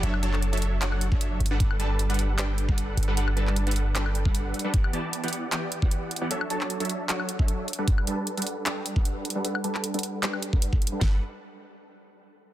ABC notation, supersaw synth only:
X:1
M:4/4
L:1/16
Q:"Swing 16ths" 1/4=153
K:Glyd
V:1 name="Supersaw synth"
[F,DAce]2 [F,DAca]3 [F,DAce]3 [F,DAcf]3 [F,DAce]3 z [G,DABf] | [G,DA]2 [G,DABa]3 [G,DABf]3 [G,DABg]3 [G,DABf]4 [G,DABf] | [G,DABf]2 [G,DABa]3 [G,DABf]3 [G,DABg]3 [G,DABf]4 [G,DABf] | [E,B,Gdf]2 [E,B,Gda]3 [E,B,Gdf]3 [E,B,Gdg]3 [E,B,Gdf]4 [E,B,Gdf] |
[F,DAce]2 [F,DAca]3 [F,DAce]3 [F,DAcf]3 [F,DAce]3 z [G,DABf] | z2 [G,DABa]3 [G,DABf]3 [G,DABg]3 [G,DABf]4 [G,DABf] | [G,DABf]2 [G,DABa]3 [G,DABf]3 [G,DABg]3 [G,DABf]4 [G,DABf] | [G,DABf]2 z12 z2 |]